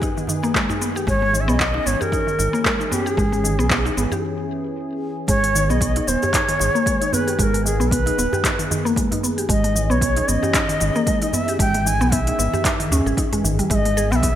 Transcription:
Already playing: D#3 B3 G#4
0.02 D#4, kick, cabasa
0.17 D#3, cabasa
0.27 D#3, darbuka dum, cabasa
0.43 A#3, darbuka tek, cabasa
0.54 G#3, kick, clap, cabasa
0.69 D#4, darbuka ka, darbuka dum, cabasa
0.82 B3, cabasa
0.96 G4, darbuka ka, cabasa
1.07 G#1 E3 G#3 C#4 C#5, kick, cabasa
1.22 G#3, darbuka ka
1.34 D#3, cabasa
1.41 E5
1.48 B1 B3 D#5, cabasa
1.60 B3, kick, clap, cabasa
1.74 D#4, darbuka tek
1.86 G#1 B3 C#5, cabasa
2.01 G4 A#4, darbuka tek, darbuka dum, cabasa
2.12 D#4, kick, cabasa
2.27 D#3, cabasa
2.39 G#1 D#3, darbuka tek, cabasa
2.53 A#3, darbuka ka, cabasa
2.65 G#3, kick, clap, cabasa
2.80 D#4, darbuka ka, darbuka tek, cabasa
2.91 B3 G4, darbuka dum, cabasa
3.06 G4 G#4, darbuka ka, cabasa
3.17 G#1 G#3, kick, cabasa
3.32 G#3, darbuka ka, cabasa
3.44 D#3, cabasa
3.59 B1 B3, cabasa
3.70 B3, kick, clap, cabasa
3.85 D#4, darbuka tek, cabasa
3.97 G#1 B3, cabasa
4.11 G4, darbuka ka, darbuka tek, darbuka dum, cabasa
5.28 G#1 D#3 G#3 B3 G#4 C#5, kick, open hi-hat, cabasa
5.44 G#3, open hi-hat
5.55 D#3, cabasa
5.70 B1 B3 D#5, darbuka ka, cabasa
5.81 B3, kick, open hi-hat, cabasa
5.96 D#4, open hi-hat, darbuka tek
6.07 D#1 B3 C#5, darbuka ka, cabasa
6.22 G4, darbuka ka, darbuka tek, darbuka dum, cabasa
6.33 D#4, kick, clap, open hi-hat, cabasa
6.48 D#3, open hi-hat, darbuka ka, cabasa
6.60 G#1 D#3, darbuka tek, cabasa
6.75 A#3, cabasa
6.86 G#3, kick, open hi-hat, cabasa
7.01 D#4, open hi-hat, darbuka tek, cabasa
7.13 B3 B4, darbuka dum, cabasa
7.27 G4, open hi-hat, darbuka ka, cabasa
7.39 G#1 G#3 A#4 B4, kick, open hi-hat, cabasa
7.54 G#3, open hi-hat
7.65 D#3 G#4, cabasa
7.80 B1 B3, darbuka ka, cabasa
7.91 B3 B4, kick, open hi-hat, cabasa
8.06 D#4, open hi-hat, darbuka tek
8.18 D#1 B3, darbuka ka, cabasa
8.33 G4, darbuka tek, darbuka dum, cabasa
8.44 D#4, kick, clap, open hi-hat, cabasa
8.59 D#3, open hi-hat, cabasa
8.71 D#3, darbuka dum, cabasa
8.85 A#3, darbuka tek, cabasa
8.96 G#3, kick, open hi-hat, cabasa
9.11 D#4, open hi-hat, darbuka dum, cabasa
9.23 B3, cabasa
9.38 G4, open hi-hat, cabasa
9.49 G#1 E3 G#3 C#4 G#4 D#5, kick, open hi-hat, cabasa
9.64 G#3, open hi-hat
9.76 D#3, cabasa
9.90 B1 B3 C#5, darbuka ka, cabasa
10.01 B3, kick, open hi-hat, cabasa
10.16 D#4, open hi-hat, darbuka tek
10.28 G#1 B3 D#5, darbuka ka, cabasa
10.43 G4, darbuka ka, darbuka tek, darbuka dum, cabasa
10.54 D#4, kick, clap, open hi-hat, cabasa
10.69 D#3, open hi-hat, darbuka ka, cabasa
10.80 G#1 D#3, darbuka tek, cabasa
10.96 A#3, cabasa
11.07 G#3, kick, open hi-hat, cabasa
11.21 D#4, open hi-hat, darbuka tek, cabasa
11.33 B3 E5, darbuka dum, cabasa
11.48 G4, open hi-hat, darbuka ka, cabasa
11.59 G#1 D#3 G#3 G5, kick, open hi-hat, cabasa
11.74 G#3, open hi-hat
11.86 D#3 G#5, cabasa
12.01 B1 B3, darbuka ka, cabasa
12.12 B3 E5, kick, open hi-hat, cabasa
12.27 D#4, open hi-hat, darbuka tek
12.39 G#1 B3, darbuka ka, cabasa
12.53 G4, darbuka ka, darbuka tek, darbuka dum, cabasa
12.65 D#4, kick, clap, open hi-hat, cabasa
12.80 D#3, open hi-hat, cabasa
12.91 D#2 C#4, darbuka dum, cabasa
13.06 G#1 G#4, darbuka tek, cabasa
13.17 D#4, kick, open hi-hat, cabasa
13.32 G#3, open hi-hat, darbuka dum, cabasa
13.44 G#1 D#3, cabasa
13.59 G3, open hi-hat, cabasa
13.70 G#1 D#3 G#3 B3 E5, kick, open hi-hat, cabasa
13.75 D#5
13.85 G#3, open hi-hat
13.97 G#4, cabasa
14.11 B1 B3 G5, darbuka ka, cabasa
14.16 E5
14.23 B3, kick, open hi-hat, cabasa

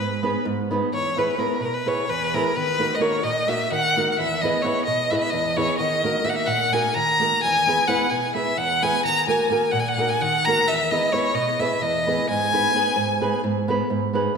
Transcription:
Already playing: G#2 B4
0.23 B3 D#4 G#4 B4
0.45 G#2
0.71 B3 D#4 G#4 B4
0.93 E2 C#5
1.17 B3 E4 G#4 B4
1.38 B3 E4 G#4 A#4 B4
1.60 B2 B4
1.65 A#4
1.74 B4
1.86 B3 E4 G#4 B4 C#5
2.10 E2 B4
2.34 B3 E4 G#4 A#4 B4
2.57 D#3 B4
2.79 A#3 D#4 F#4 A#4
2.95 D#5
3.00 A#3 D#4 F#4 A#4 C#5
3.23 A#2 D#5
3.47 A#3 D#4 F#4 A#4 E5
3.71 D#3 F#5
3.97 A#3 D#4 F#4 A#4
4.11 F#5
4.17 E2 E5
4.41 B3 E4 G#4 B4 D#5
4.62 B3 E4 G#4 C#5
4.66 B4
4.85 B2 D#5
5.11 B3 E4 G#4 B4 E5
5.15 D#5
5.21 E5
5.30 E2 D#5
5.57 B3 E4 G#4 B4 C#5
5.78 D#3 D#5
6.03 A#3 D#4 F#4 A#4
6.24 A#3 D#4 F#4 A#4 E5
6.29 F#5
6.36 E5
6.47 A#2 F#5
6.72 A#3 D#4 F#4 A#4 G#5
6.94 D#3 A#5
7.20 A#3 D#4 F#4 A#4
7.43 E2 G#5
7.66 B3 E4 G#4 B4
7.88 B3 E4 G#4 B4 F#5
8.10 B2 G#5
8.35 B3 E4 G#4 B4 E5
8.57 E2 F#5
8.82 B3 E4 G#4 B4 G#5
9.05 D#3 A#5
9.27 A#3 D#4 F#4 A#4 G#5
9.50 A#3 D#4 F#4 A#4
9.71 A#2 F#5
9.80 G#5
9.88 F#5
9.98 A#3 D#4 F#4 A#4
10.10 G#5
10.22 D#3 F#5
10.45 A#3 D#4 F#4 A#4 A#5
10.68 E2 E5
10.91 B3 E4 G#4 B4 D#5
11.12 B3 E4 G#4 B4 C#5
11.34 B2 D#5
11.59 B3 E4 G#4 B4 E5
11.82 E2 D#5
12.07 B3 E4 G#4 B4
12.30 G#2 G#5
12.53 B3 D#4 G#4 B4
12.74 B3 D#4 G#4 B4
12.96 G#2
13.21 B3 D#4 G#4 B4
13.44 G#2
13.68 B3 D#4 G#4 B4
13.90 G#2
14.13 B3 D#4 G#4 B4

